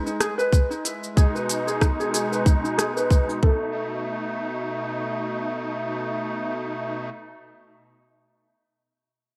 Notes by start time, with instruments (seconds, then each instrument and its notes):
Already playing: accordion G#3
0.06 ukulele D#4, shaker
0.20 ukulele G#4, cross-stick, closed hi-hat, shaker
0.38 ukulele B4, shaker
0.53 kick, shaker
0.70 ukulele D#4, shaker
0.85 ukulele E4, closed hi-hat, shaker
1.04 shaker
1.16 accordion B2 D#4, ukulele G#4, kick, shaker
1.35 ukulele B4, shaker
1.49 closed hi-hat, shaker
1.67 ukulele G#4, shaker
1.81 ukulele D#4, kick, cross-stick, shaker
2.00 ukulele G#4, shaker
2.14 ukulele G#4, closed hi-hat, shaker
2.32 ukulele B4, shaker
2.46 ukulele D#4, kick, shaker
2.64 ukulele D#4, shaker
2.78 ukulele G#4, cross-stick, closed hi-hat, shaker
2.96 ukulele B4, shaker
3.11 kick, shaker
3.29 ukulele D#4, shaker
3.43 accordion B2 A3 D#4, ukulele A4, kick